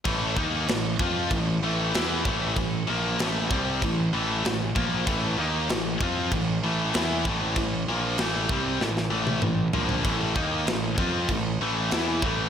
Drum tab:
CC |x---x---x---x---|x---x---x---x---|x---x---x---x---|x---x-----------|
SD |----o-------o---|----o-------o---|----o-------o---|----o---oo------|
T1 |----------------|----------------|----------------|-----------o----|
T2 |----------------|----------------|----------------|------------o---|
FT |----------------|----------------|----------------|--------------oo|
BD |o-o---o-o-----o-|o-----o-o-----o-|o-----o-o-----o-|o-----o---------|

CC |x---x---x---x---|
SD |----o-------o---|
T1 |----------------|
T2 |----------------|
FT |----------------|
BD |o-o---o-o-----o-|